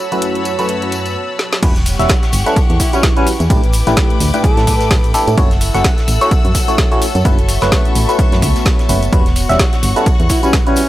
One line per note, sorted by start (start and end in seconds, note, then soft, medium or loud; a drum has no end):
0.00 1.16 F#3 medium
0.00 1.16 F#4 medium
0.00 1.61 F#4 medium
0.00 1.16 C#5 medium
0.00 1.61 C#5 medium
0.00 0.51 F#5 medium
0.00 1.61 A5 medium
0.00 1.61 B5 medium
0.00 1.61 E6 medium
0.12 0.56 F#2 medium
0.12 0.56 A3 medium
0.12 0.56 C#4 medium
0.12 0.56 E4 medium
0.12 0.56 F#4 medium
0.12 0.56 B4 loud
0.12 closed hi-hat soft
0.12 tambourine soft
0.22 closed hi-hat medium
0.22 tambourine soft
0.35 closed hi-hat soft
0.45 closed hi-hat medium
0.45 tambourine medium
0.59 1.16 F#2 medium
0.59 1.16 A3 medium
0.59 1.16 C#4 medium
0.59 1.16 E4 medium
0.59 1.16 F#4 medium
0.59 1.16 B4 medium
0.59 closed hi-hat soft
0.59 tambourine soft
0.69 closed hi-hat medium
0.69 tambourine soft
0.82 closed hi-hat soft
0.92 closed hi-hat medium
0.92 tambourine medium
1.05 closed hi-hat soft
1.05 tambourine soft
1.39 snare medium
1.53 snare medium
1.62 1.96 E1 loud
1.62 1.74 G3 medium
1.62 1.74 C#4 medium
1.62 1.74 E4 medium
1.62 4.26 E4 medium
1.62 1.74 F#4 medium
1.62 3.48 G4 medium
1.62 1.74 B4 loud
1.62 3.48 F#5 medium
1.62 3.48 C#6 medium
1.62 kick loud
1.62 closed hi-hat loud
1.62 crash loud
1.62 ride medium
1.62 tambourine soft
1.62 shaker soft
1.76 snare soft
1.76 closed hi-hat soft
1.76 shaker soft
1.86 open hi-hat loud
1.86 ride medium
1.86 tambourine medium
1.86 shaker medium
1.99 2.08 E1 medium
1.99 2.14 G3 medium
1.99 2.14 C#4 medium
1.99 2.14 E4 medium
1.99 2.14 F#4 medium
1.99 2.14 E5 loud
1.99 snare soft
1.99 closed hi-hat soft
1.99 tambourine soft
1.99 shaker soft
2.08 kick loud
2.08 snare loud
2.08 closed hi-hat loud
2.08 ride medium
2.08 tambourine soft
2.08 shaker soft
2.19 4.26 B4 medium
2.19 snare medium
2.19 closed hi-hat soft
2.24 shaker soft
2.32 2.44 G1 medium
2.32 open hi-hat loud
2.32 ride medium
2.32 tambourine medium
2.32 shaker medium
2.46 2.55 G3 medium
2.46 2.55 C#4 medium
2.46 2.55 E4 medium
2.46 2.55 F#4 medium
2.46 2.58 A4 medium
2.46 2.55 B4 loud
2.46 closed hi-hat soft
2.46 tambourine soft
2.46 shaker soft
2.56 kick loud
2.56 closed hi-hat medium
2.56 ride medium
2.56 tambourine soft
2.56 shaker soft
2.70 2.78 E2 medium
2.70 closed hi-hat soft
2.70 shaker soft
2.80 2.91 E4 medium
2.80 kick medium
2.80 open hi-hat loud
2.80 ride medium
2.80 tambourine medium
2.80 shaker medium
2.93 3.08 G3 medium
2.93 3.08 C#4 medium
2.93 3.05 C#4 medium
2.93 3.08 E4 medium
2.93 3.08 F#4 medium
2.93 3.08 B4 medium
2.93 closed hi-hat soft
2.93 tambourine soft
2.93 shaker soft
3.03 kick loud
3.03 snare loud
3.03 closed hi-hat medium
3.03 shaker soft
3.05 snare loud
3.17 3.32 G3 loud
3.17 3.32 C#4 medium
3.17 3.28 C#4 medium
3.17 3.32 E4 medium
3.17 3.32 F#4 medium
3.17 3.32 B4 loud
3.17 closed hi-hat soft
3.17 shaker soft
3.27 open hi-hat loud
3.27 ride medium
3.27 tambourine medium
3.27 shaker medium
3.40 3.48 E2 loud
3.40 closed hi-hat soft
3.40 tambourine medium
3.40 shaker soft
3.50 3.83 A1 loud
3.50 3.62 A2 medium
3.50 3.62 A3 medium
3.50 3.62 D4 medium
3.50 3.62 E4 medium
3.50 3.62 G4 medium
3.50 6.13 A4 medium
3.50 5.36 B4 medium
3.50 3.62 B4 medium
3.50 5.36 G5 medium
3.50 5.36 D6 medium
3.50 kick loud
3.50 closed hi-hat loud
3.50 ride medium
3.50 tambourine soft
3.50 shaker soft
3.63 closed hi-hat soft
3.63 ride soft
3.63 shaker soft
3.73 open hi-hat loud
3.73 ride medium
3.73 tambourine medium
3.73 shaker medium
3.87 3.95 A1 medium
3.87 4.31 A2 medium
3.87 4.31 A3 medium
3.87 4.31 D4 medium
3.87 4.31 E4 medium
3.87 4.31 G4 medium
3.87 4.31 B4 loud
3.87 snare soft
3.87 closed hi-hat soft
3.87 tambourine medium
3.87 shaker soft
3.97 5.99 E5 medium
3.97 kick loud
3.97 snare loud
3.97 closed hi-hat loud
3.97 ride medium
3.97 shaker soft
4.10 closed hi-hat soft
4.10 shaker soft
4.20 4.32 D2 medium
4.20 open hi-hat loud
4.20 ride medium
4.20 tambourine medium
4.20 shaker medium
4.34 5.12 A2 medium
4.34 5.12 A3 medium
4.34 5.12 D4 medium
4.34 4.42 E4 medium
4.34 5.12 E4 medium
4.34 5.12 G4 medium
4.34 5.12 B4 loud
4.34 6.13 B5 medium
4.34 closed hi-hat soft
4.34 tambourine medium
4.34 shaker soft
4.44 4.91 A4 medium
4.44 kick loud
4.44 closed hi-hat medium
4.44 ride medium
4.44 tambourine soft
4.44 shaker soft
4.57 4.66 A2 medium
4.57 snare medium
4.57 closed hi-hat soft
4.57 shaker soft
4.67 kick medium
4.67 open hi-hat loud
4.67 ride medium
4.67 tambourine medium
4.67 shaker medium
4.80 snare soft
4.80 closed hi-hat soft
4.80 tambourine medium
4.80 shaker soft
4.91 kick loud
4.91 snare loud
4.91 closed hi-hat medium
4.91 open hi-hat medium
4.91 tambourine soft
4.91 shaker soft
5.04 closed hi-hat soft
5.04 shaker soft
5.14 5.35 A3 loud
5.14 5.35 D4 medium
5.14 5.35 E4 medium
5.14 5.35 G4 medium
5.14 5.35 A4 loud
5.14 open hi-hat loud
5.14 ride medium
5.14 tambourine medium
5.14 shaker medium
5.27 5.36 A2 medium
5.27 closed hi-hat soft
5.27 tambourine medium
5.27 shaker soft
5.38 5.71 F#1 loud
5.38 5.49 A3 medium
5.38 5.49 C#4 medium
5.38 5.49 E4 medium
5.38 5.49 F#4 medium
5.38 9.88 F#4 medium
5.38 9.09 A4 medium
5.38 5.49 C#5 loud
5.38 7.23 F#5 medium
5.38 7.23 E6 medium
5.38 kick loud
5.38 closed hi-hat medium
5.38 ride medium
5.38 tambourine soft
5.38 shaker soft
5.51 snare soft
5.51 closed hi-hat soft
5.51 shaker soft
5.61 open hi-hat loud
5.61 ride medium
5.61 tambourine loud
5.61 shaker medium
5.74 5.83 F#1 medium
5.74 5.89 A3 medium
5.74 5.89 C#4 medium
5.74 5.89 E4 medium
5.74 5.89 F#4 medium
5.74 5.89 F#5 loud
5.74 snare soft
5.74 closed hi-hat soft
5.74 tambourine medium
5.74 shaker soft
5.84 9.88 C#5 medium
5.84 kick loud
5.84 snare loud
5.84 closed hi-hat medium
5.84 ride loud
5.84 shaker soft
5.98 snare medium
5.98 closed hi-hat soft
5.98 shaker soft
6.08 6.19 A1 medium
6.08 open hi-hat loud
6.08 ride medium
6.08 tambourine loud
6.08 shaker medium
6.21 6.30 A3 loud
6.21 6.30 C#4 medium
6.21 6.30 E4 medium
6.21 6.30 F#4 medium
6.21 6.30 C#5 loud
6.21 8.01 F#5 medium
6.21 closed hi-hat soft
6.21 tambourine medium
6.21 shaker soft
6.31 kick loud
6.31 closed hi-hat medium
6.31 ride medium
6.31 tambourine soft
6.31 shaker soft
6.45 6.53 F#2 loud
6.45 closed hi-hat soft
6.45 shaker soft
6.55 kick medium
6.55 open hi-hat loud
6.55 ride medium
6.55 tambourine loud
6.55 shaker medium
6.68 6.83 A3 medium
6.68 6.83 C#4 medium
6.68 6.83 E4 medium
6.68 6.83 F#4 medium
6.68 6.83 C#5 medium
6.68 closed hi-hat soft
6.68 tambourine medium
6.68 shaker soft
6.78 kick loud
6.78 snare loud
6.78 closed hi-hat medium
6.78 ride medium
6.78 shaker soft
6.92 7.06 A3 loud
6.92 7.06 C#4 medium
6.92 7.06 E4 medium
6.92 7.06 F#4 medium
6.92 7.06 C#5 loud
6.92 closed hi-hat soft
6.92 shaker soft
7.02 open hi-hat loud
7.02 ride medium
7.02 tambourine loud
7.02 shaker medium
7.15 7.23 F#2 medium
7.15 closed hi-hat soft
7.15 tambourine medium
7.15 shaker soft
7.25 7.58 F#1 loud
7.25 7.36 A3 medium
7.25 9.88 B3 medium
7.25 7.36 C#4 medium
7.25 7.36 E4 medium
7.25 7.36 F#4 medium
7.25 7.36 B4 loud
7.25 9.11 E5 medium
7.25 9.11 C#6 medium
7.25 kick loud
7.25 closed hi-hat medium
7.25 ride medium
7.25 shaker soft
7.38 closed hi-hat soft
7.38 ride soft
7.38 shaker soft
7.49 open hi-hat loud
7.49 ride medium
7.49 tambourine medium
7.49 shaker medium
7.61 7.70 F#1 medium
7.61 8.06 A3 medium
7.61 8.06 C#4 medium
7.61 8.06 E4 medium
7.61 8.06 F#4 medium
7.61 8.06 B4 loud
7.61 snare medium
7.61 snare soft
7.61 closed hi-hat soft
7.61 tambourine medium
7.61 shaker soft
7.72 kick loud
7.72 snare loud
7.72 closed hi-hat medium
7.72 ride medium
7.72 tambourine soft
7.72 shaker soft
7.85 closed hi-hat soft
7.85 shaker soft
7.95 8.07 A1 medium
7.95 open hi-hat loud
7.95 ride medium
7.95 tambourine loud
7.95 shaker medium
8.09 8.87 A3 medium
8.09 8.87 C#4 medium
8.09 8.87 E4 medium
8.09 8.87 F#4 medium
8.09 8.87 B4 loud
8.09 closed hi-hat soft
8.09 tambourine medium
8.09 shaker soft
8.19 kick loud
8.19 closed hi-hat medium
8.19 ride medium
8.19 shaker soft
8.32 8.44 F#2 medium
8.32 snare medium
8.32 closed hi-hat soft
8.32 shaker soft
8.42 8.53 C#2 loud
8.42 kick medium
8.42 open hi-hat loud
8.42 ride medium
8.42 tambourine loud
8.42 shaker medium
8.56 snare soft
8.56 closed hi-hat soft
8.56 tambourine medium
8.56 shaker soft
8.66 kick loud
8.66 snare loud
8.66 closed hi-hat medium
8.66 ride medium
8.66 shaker soft
8.79 snare medium
8.79 closed hi-hat soft
8.79 shaker soft
8.89 9.09 F#1 medium
8.89 9.01 A3 medium
8.89 9.01 C#4 medium
8.89 9.01 E4 medium
8.89 9.01 F#4 medium
8.89 9.01 B4 medium
8.89 open hi-hat loud
8.89 ride medium
8.89 tambourine medium
8.89 shaker medium
9.03 closed hi-hat soft
9.03 tambourine medium
9.03 shaker soft
9.12 9.46 E1 loud
9.12 9.24 G3 medium
9.12 9.24 C#4 medium
9.12 9.24 E4 medium
9.12 10.89 E4 medium
9.12 9.24 F#4 medium
9.12 10.89 F#4 medium
9.12 9.24 B4 loud
9.12 10.89 F#5 medium
9.12 10.89 C#6 medium
9.12 kick loud
9.12 closed hi-hat medium
9.12 ride medium
9.12 tambourine soft
9.12 shaker soft
9.26 snare soft
9.26 closed hi-hat soft
9.26 shaker soft
9.35 open hi-hat loud
9.35 ride medium
9.35 tambourine medium
9.35 shaker medium
9.49 9.58 E1 medium
9.49 9.64 G3 loud
9.49 9.64 C#4 medium
9.49 9.64 E4 medium
9.49 9.64 F#4 medium
9.49 9.64 E5 loud
9.49 snare soft
9.49 closed hi-hat soft
9.49 tambourine medium
9.49 shaker soft
9.58 10.89 B4 medium
9.58 kick loud
9.58 snare loud
9.58 closed hi-hat medium
9.58 ride medium
9.58 tambourine soft
9.58 shaker soft
9.73 snare medium
9.73 closed hi-hat soft
9.73 shaker soft
9.83 9.94 G1 medium
9.83 open hi-hat loud
9.83 ride medium
9.83 tambourine medium
9.83 shaker medium
9.96 10.05 G3 medium
9.96 10.05 C#4 medium
9.96 10.05 E4 medium
9.96 10.05 F#4 medium
9.96 10.08 A4 medium
9.96 10.05 B4 loud
9.96 closed hi-hat soft
9.96 tambourine medium
9.96 shaker soft
10.06 kick loud
10.06 closed hi-hat medium
10.06 ride loud
10.06 tambourine soft
10.06 shaker soft
10.20 10.28 E2 loud
10.20 closed hi-hat soft
10.20 shaker soft
10.29 10.41 E4 medium
10.29 kick medium
10.29 open hi-hat loud
10.29 ride medium
10.29 tambourine medium
10.29 shaker medium
10.43 10.58 G3 medium
10.43 10.58 C#4 medium
10.43 10.55 C#4 medium
10.43 10.58 E4 medium
10.43 10.58 F#4 medium
10.43 10.58 B4 medium
10.43 closed hi-hat soft
10.43 tambourine medium
10.43 shaker soft
10.53 kick loud
10.53 snare loud
10.53 closed hi-hat medium
10.53 ride medium
10.53 shaker soft
10.67 10.82 G3 loud
10.67 10.89 C#4 medium
10.67 10.82 C#4 medium
10.67 10.82 E4 medium
10.67 10.82 F#4 medium
10.67 10.82 B4 loud
10.67 closed hi-hat soft
10.67 shaker soft
10.76 open hi-hat loud
10.76 ride medium
10.76 tambourine loud
10.76 shaker medium